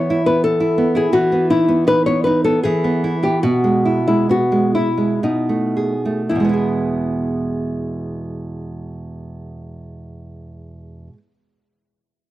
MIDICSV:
0, 0, Header, 1, 3, 480
1, 0, Start_track
1, 0, Key_signature, 4, "major"
1, 0, Tempo, 692042
1, 766, Time_signature, 3, 2, 24, 8
1, 767, Tempo, 739827
1, 1247, Tempo, 785340
1, 2207, Tempo, 859599
1, 2687, Tempo, 940439
1, 3167, Tempo, 1081081
1, 4127, Tempo, 1056338
1, 6366, End_track
2, 0, Start_track
2, 0, Title_t, "Nylon-string guitar"
2, 0, Program_c, 0, 24
2, 0, Note_on_c, 0, 73, 91
2, 149, Note_off_c, 0, 73, 0
2, 183, Note_on_c, 0, 71, 61
2, 285, Note_off_c, 0, 71, 0
2, 304, Note_on_c, 0, 69, 77
2, 629, Note_off_c, 0, 69, 0
2, 669, Note_on_c, 0, 68, 61
2, 771, Note_off_c, 0, 68, 0
2, 784, Note_on_c, 0, 66, 72
2, 995, Note_off_c, 0, 66, 0
2, 1026, Note_on_c, 0, 64, 65
2, 1242, Note_off_c, 0, 64, 0
2, 1266, Note_on_c, 0, 71, 85
2, 1365, Note_off_c, 0, 71, 0
2, 1379, Note_on_c, 0, 73, 68
2, 1481, Note_off_c, 0, 73, 0
2, 1488, Note_on_c, 0, 71, 67
2, 1594, Note_off_c, 0, 71, 0
2, 1613, Note_on_c, 0, 69, 61
2, 1717, Note_off_c, 0, 69, 0
2, 1729, Note_on_c, 0, 68, 64
2, 2063, Note_off_c, 0, 68, 0
2, 2095, Note_on_c, 0, 67, 59
2, 2205, Note_off_c, 0, 67, 0
2, 2214, Note_on_c, 0, 66, 65
2, 2544, Note_off_c, 0, 66, 0
2, 2575, Note_on_c, 0, 64, 51
2, 2684, Note_off_c, 0, 64, 0
2, 2703, Note_on_c, 0, 66, 61
2, 2912, Note_off_c, 0, 66, 0
2, 2928, Note_on_c, 0, 64, 48
2, 3153, Note_off_c, 0, 64, 0
2, 3176, Note_on_c, 0, 63, 44
2, 3635, Note_off_c, 0, 63, 0
2, 3645, Note_on_c, 0, 64, 45
2, 5803, Note_off_c, 0, 64, 0
2, 6366, End_track
3, 0, Start_track
3, 0, Title_t, "Nylon-string guitar"
3, 0, Program_c, 1, 24
3, 0, Note_on_c, 1, 52, 65
3, 0, Note_on_c, 1, 59, 49
3, 70, Note_on_c, 1, 64, 52
3, 129, Note_off_c, 1, 59, 0
3, 185, Note_on_c, 1, 59, 43
3, 249, Note_off_c, 1, 64, 0
3, 419, Note_on_c, 1, 64, 41
3, 532, Note_off_c, 1, 59, 0
3, 540, Note_on_c, 1, 59, 45
3, 603, Note_off_c, 1, 64, 0
3, 659, Note_on_c, 1, 64, 42
3, 725, Note_off_c, 1, 59, 0
3, 744, Note_off_c, 1, 52, 0
3, 773, Note_off_c, 1, 64, 0
3, 781, Note_on_c, 1, 52, 63
3, 907, Note_on_c, 1, 59, 43
3, 1023, Note_on_c, 1, 63, 43
3, 1087, Note_off_c, 1, 59, 0
3, 1142, Note_on_c, 1, 59, 42
3, 1208, Note_off_c, 1, 63, 0
3, 1261, Note_on_c, 1, 63, 44
3, 1325, Note_off_c, 1, 59, 0
3, 1383, Note_on_c, 1, 59, 43
3, 1441, Note_off_c, 1, 63, 0
3, 1505, Note_on_c, 1, 63, 47
3, 1561, Note_off_c, 1, 59, 0
3, 1613, Note_on_c, 1, 59, 41
3, 1681, Note_off_c, 1, 63, 0
3, 1699, Note_off_c, 1, 52, 0
3, 1724, Note_off_c, 1, 59, 0
3, 1738, Note_on_c, 1, 52, 54
3, 1856, Note_on_c, 1, 59, 41
3, 1976, Note_on_c, 1, 64, 45
3, 2042, Note_off_c, 1, 59, 0
3, 2091, Note_on_c, 1, 59, 37
3, 2165, Note_off_c, 1, 64, 0
3, 2203, Note_off_c, 1, 52, 0
3, 2211, Note_off_c, 1, 59, 0
3, 2217, Note_on_c, 1, 47, 54
3, 2332, Note_on_c, 1, 56, 39
3, 2452, Note_on_c, 1, 64, 40
3, 2519, Note_off_c, 1, 56, 0
3, 2575, Note_on_c, 1, 56, 38
3, 2642, Note_off_c, 1, 64, 0
3, 2696, Note_on_c, 1, 59, 37
3, 2761, Note_off_c, 1, 56, 0
3, 2811, Note_on_c, 1, 56, 36
3, 2876, Note_off_c, 1, 59, 0
3, 2928, Note_on_c, 1, 64, 37
3, 2996, Note_off_c, 1, 56, 0
3, 3044, Note_on_c, 1, 56, 33
3, 3120, Note_off_c, 1, 64, 0
3, 3150, Note_off_c, 1, 47, 0
3, 3168, Note_off_c, 1, 56, 0
3, 3174, Note_on_c, 1, 47, 42
3, 3290, Note_on_c, 1, 57, 29
3, 3411, Note_on_c, 1, 68, 31
3, 3482, Note_off_c, 1, 57, 0
3, 3539, Note_on_c, 1, 57, 32
3, 3604, Note_off_c, 1, 68, 0
3, 3637, Note_off_c, 1, 47, 0
3, 3651, Note_on_c, 1, 40, 42
3, 3654, Note_off_c, 1, 57, 0
3, 3671, Note_on_c, 1, 47, 37
3, 3692, Note_on_c, 1, 56, 38
3, 3713, Note_on_c, 1, 59, 39
3, 3733, Note_on_c, 1, 64, 33
3, 3752, Note_on_c, 1, 68, 34
3, 5809, Note_off_c, 1, 40, 0
3, 5830, Note_off_c, 1, 47, 0
3, 5851, Note_off_c, 1, 56, 0
3, 5873, Note_off_c, 1, 59, 0
3, 5893, Note_off_c, 1, 64, 0
3, 5912, Note_off_c, 1, 68, 0
3, 6366, End_track
0, 0, End_of_file